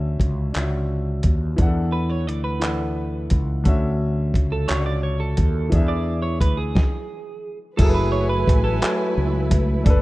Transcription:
Already playing: D2 D3 C#4 F#4 E5
0.20 C#2, kick, closed hi-hat
0.52 C#2 C#4 D4 F4, clap, closed hi-hat
0.58 E5
0.62 F#4
1.23 D#2, kick, closed hi-hat
1.56 E2 E3 D4 G#4, kick, closed hi-hat
1.62 F#5
1.67 A4
1.92 B4
2.10 C#5
2.27 D2 D5, closed hi-hat
2.44 B4
2.60 E3 D4 A4, clap, closed hi-hat
2.65 F#5
3.30 C#2, kick, closed hi-hat
3.64 D2 D3 C#4 F#4, kick, closed hi-hat
3.69 E5
4.34 C#2, kick, closed hi-hat
4.52 A4
4.67 C#2 D4 F#4 C#5, clap, closed hi-hat
4.72 C#5
4.79 D5
4.86 D5
5.03 C#5
5.20 A4
5.37 D#2, kick, closed hi-hat
5.70 E2 E3 D4, kick, closed hi-hat
5.74 G#4 E5
5.88 D5
6.22 C#5
6.41 D2 B4, kick, closed hi-hat
6.57 G#4
6.75 kick, snare
7.77 F#1 F#3 A3 E4 G#4 A4 B4 G#5, kick, closed hi-hat, crash
7.81 A4 A#4
7.89 B4
7.94 B4
8.12 C#5
8.29 B4
8.47 A1, kick, closed hi-hat
8.64 A4
8.80 F#3 E4 A4 G#5, muted fretless electric bass stroke, clap, closed hi-hat
8.85 C#5
9.17 C#2
9.51 kick, closed hi-hat
9.84 F#1 D3 D4 A4, kick, closed hi-hat
9.90 B4

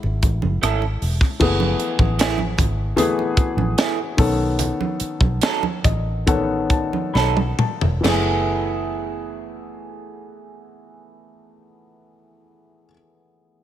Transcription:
Already playing: G#3 A3 E4 F#4 F#5
0.03 G#1, muted conga
0.23 A1, kick, closed hi-hat
0.42 F#1, high conga
0.62 G#1 A3 C#4 E4 A4, cross-stick, closed hi-hat
0.82 muted conga
1.02 E1, open hi-hat
1.21 kick, cross-stick
1.40 F#1 E3 A3 B3 G#4, kick, crash, muted conga, low conga
1.60 high conga
1.80 closed hi-hat
1.99 A1, kick, high conga
2.19 A3 B3 E4 G#4, snare, closed hi-hat, muted conga
2.38 high conga
2.58 G#1, kick, closed hi-hat, low conga
2.96 E3 A3 B3 G#4, closed hi-hat, muted conga, low conga
3.19 muted conga
3.37 muted fingered electric bass stroke, kick, closed hi-hat
3.57 A1, high conga
3.78 A3 B3 E4 G#4, snare, closed hi-hat, muted conga
4.17 B1 D#3 B3 C#4 A4, kick, open hi-hat
4.59 closed hi-hat, muted conga, low conga
4.81 muted conga, high conga
5.00 muted fingered electric bass stroke, closed hi-hat
5.21 B1, kick, high conga
5.41 F#3 C#4 D#4 A4, snare, closed hi-hat, muted conga
5.63 muted conga, high conga
5.84 A1 D#5, kick, closed hi-hat, low conga
6.26 D#3 B3 C#4 A4 F#5, kick, closed hi-hat, low conga
6.70 A5, kick, closed hi-hat
6.93 high conga
7.14 B1 F#3 C#4 D#4 A4 B5, snare, muted conga
7.37 high tom
7.59 A5, mid tom
7.81 E1, floor tom
8.01 E3 A3, crash
8.05 F#1 B3 E4 G#4, snare, high conga

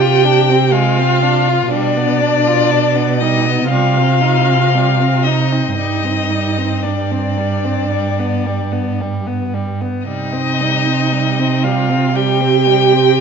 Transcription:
Already playing: C3 G4 G5
0.01 F4
0.25 D4
0.50 C4
0.71 G#3 F4 F5
0.99 C4
1.22 D4
1.48 F4
1.71 B2 G3 D4 D5
1.97 B3
2.21 D4
2.47 F4
2.71 D4
2.95 B3
3.20 G3 D#4 D#5
3.46 B3
3.69 C3 G3 F4 F5
3.98 C4
4.22 D#4
4.48 C4
4.74 G3
5.00 C4
5.23 D#4 D#5
5.53 C4
5.76 G2 G3 D#4 D#5
6.04 C4
6.30 G3
6.58 C4
6.82 G3 D4 D5
7.11 C4
7.38 G3
7.65 C4
7.91 G3
8.19 B3
8.46 G3
8.72 B3
9.01 G3
9.27 B3
9.54 G3
9.81 B3
10.07 C3 G3 D#4 D#5
10.33 C4
10.61 G3
10.87 C4
11.13 G3
11.39 C4
11.64 G3 F4 F5
11.89 C4
12.15 G3 G4 G5
12.41 C4
12.67 G3
12.94 C4

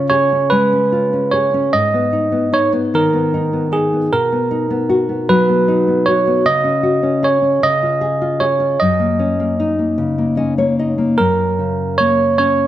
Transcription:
Already playing: C#3 C#4 F4
0.10 G#4 C#5
0.32 C#4
0.50 G#3 B4
0.73 C#4
0.92 F4
1.13 C#4
1.32 G#4 C#5
1.54 C#4
1.73 G#2 D#5
1.94 B3
2.13 D#4
2.32 B3
2.52 D#4 C#5
2.73 B3
2.94 D#3 A#4
3.13 B3
3.34 D#4
3.53 B3
3.72 D#4 G#4
3.93 B3
4.12 B2 A#4
4.32 B3
4.51 D#4
4.70 B3
4.89 F#4
5.09 B3
5.29 F#3 B4
5.49 B3
5.68 D#4
5.88 B3
6.06 F#4 C#5
6.27 B3
6.45 C#3 D#5
6.64 C#4
6.83 F#4
7.03 C#4
7.23 G#4 C#5
7.42 C#4
7.63 C#3 D#5
7.83 F4
8.01 G#4
8.22 F4
8.40 G#4 C#5
8.60 F4
8.80 F#2 D#5
9.00 A#3
9.19 C#4
9.40 A#3
9.60 D#4
9.79 A#3
9.98 C#3
10.18 A#3
10.37 C#4 D#5
10.58 A#3 C#5
10.79 D#4 D#5
10.98 A#3
11.18 F#2 A#4
11.59 C#3
11.98 A#3 C#5
12.38 C#4 C#5

